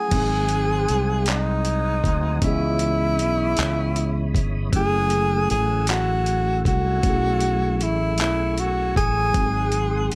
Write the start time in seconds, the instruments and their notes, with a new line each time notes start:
Already playing: tine electric piano G#4 F#5 G#5, tenor saxophone G#4
0.08 fretless electric bass G#1, tine electric piano F#3 G#3, tonewheel organ C5 F#5 G#5 D#6, kick, closed hi-hat, crash
0.13 tine electric piano C4 D#4
0.17 tine electric piano G#4
0.49 closed hi-hat
0.89 fretless electric bass C2, closed hi-hat
1.26 tenor saxophone D#4, clap, closed hi-hat
1.65 closed hi-hat
2.04 fretless electric bass D2, kick, closed hi-hat
2.37 tine electric piano E3, tenor saxophone D#4
2.41 fretless electric bass C#2, tine electric piano B3 C#4, tonewheel organ E4 C#5 B5 D#6, tenor saxophone E4, kick, closed hi-hat
2.45 tine electric piano G#4 D#5
2.79 closed hi-hat
3.19 fretless electric bass B1, closed hi-hat
3.57 fretless electric bass C#2, clap, closed hi-hat
3.96 closed hi-hat
4.35 fretless electric bass G1, kick, closed hi-hat
4.69 tine electric piano F#3 G#3, tonewheel organ A3 F#5 G#5 E6, kick, closed hi-hat
4.73 fretless electric bass F#1, tine electric piano C#4 E4, tenor saxophone G#4
4.78 tine electric piano A3 G#4
5.10 closed hi-hat
5.50 fretless electric bass A1, tenor saxophone G#4, closed hi-hat
5.87 tenor saxophone F#4, clap, closed hi-hat
6.26 closed hi-hat
6.65 fretless electric bass C2, tenor saxophone F#4, kick, closed hi-hat
7.01 fretless electric bass B1, tine electric piano F#3 A3, tonewheel organ A3 C#6, kick, closed hi-hat
7.05 tine electric piano C#4 E4
7.10 tine electric piano G#4
7.41 closed hi-hat
7.76 tenor saxophone F#4
7.81 fretless electric bass A1, tenor saxophone E4, closed hi-hat
8.18 fretless electric bass B1, tenor saxophone E4, clap, closed hi-hat
8.58 tenor saxophone F#4, closed hi-hat
8.96 fretless electric bass A1, tenor saxophone G#4, kick, closed hi-hat
9.31 tine electric piano F#3 G#3, tonewheel organ G#4 F#5 C6, kick, closed hi-hat
9.35 fretless electric bass G#1, tine electric piano C4 D#4, tonewheel organ D#6
9.40 tine electric piano F#4
9.47 tine electric piano G#4
9.72 closed hi-hat
10.12 closed hi-hat